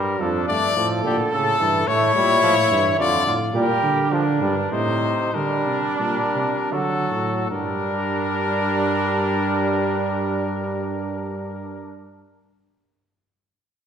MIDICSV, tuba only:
0, 0, Header, 1, 2, 480
1, 0, Start_track
1, 0, Key_signature, -2, "minor"
1, 0, Tempo, 558140
1, 181, Time_signature, 3, 2, 24, 8
1, 3540, Tempo, 611621
1, 4500, Tempo, 663717
1, 4980, Tempo, 712589
1, 5460, Tempo, 788436
1, 5940, Tempo, 825309
1, 9638, End_track
2, 0, Start_track
2, 0, Title_t, "Tuba"
2, 0, Program_c, 0, 58
2, 0, Note_on_c, 0, 43, 80
2, 171, Note_off_c, 0, 43, 0
2, 176, Note_on_c, 0, 41, 97
2, 413, Note_off_c, 0, 41, 0
2, 419, Note_on_c, 0, 43, 72
2, 654, Note_off_c, 0, 43, 0
2, 660, Note_on_c, 0, 45, 91
2, 889, Note_off_c, 0, 45, 0
2, 894, Note_on_c, 0, 46, 100
2, 1002, Note_off_c, 0, 46, 0
2, 1143, Note_on_c, 0, 45, 74
2, 1367, Note_off_c, 0, 45, 0
2, 1373, Note_on_c, 0, 43, 89
2, 1608, Note_off_c, 0, 43, 0
2, 1612, Note_on_c, 0, 45, 99
2, 1847, Note_off_c, 0, 45, 0
2, 1857, Note_on_c, 0, 46, 89
2, 2085, Note_off_c, 0, 46, 0
2, 2091, Note_on_c, 0, 45, 93
2, 2325, Note_off_c, 0, 45, 0
2, 2332, Note_on_c, 0, 43, 97
2, 2563, Note_off_c, 0, 43, 0
2, 2568, Note_on_c, 0, 41, 81
2, 2800, Note_off_c, 0, 41, 0
2, 2805, Note_on_c, 0, 45, 86
2, 3038, Note_off_c, 0, 45, 0
2, 3043, Note_on_c, 0, 46, 114
2, 3154, Note_off_c, 0, 46, 0
2, 3291, Note_on_c, 0, 50, 96
2, 3778, Note_on_c, 0, 43, 106
2, 3790, Note_off_c, 0, 50, 0
2, 4002, Note_off_c, 0, 43, 0
2, 4006, Note_on_c, 0, 45, 97
2, 4318, Note_off_c, 0, 45, 0
2, 4504, Note_on_c, 0, 50, 89
2, 4722, Note_off_c, 0, 50, 0
2, 4737, Note_on_c, 0, 48, 78
2, 4847, Note_off_c, 0, 48, 0
2, 4978, Note_on_c, 0, 46, 85
2, 5085, Note_off_c, 0, 46, 0
2, 5214, Note_on_c, 0, 48, 85
2, 5321, Note_off_c, 0, 48, 0
2, 5456, Note_on_c, 0, 50, 82
2, 5687, Note_off_c, 0, 50, 0
2, 5696, Note_on_c, 0, 45, 82
2, 5934, Note_off_c, 0, 45, 0
2, 5938, Note_on_c, 0, 43, 95
2, 8555, Note_off_c, 0, 43, 0
2, 9638, End_track
0, 0, End_of_file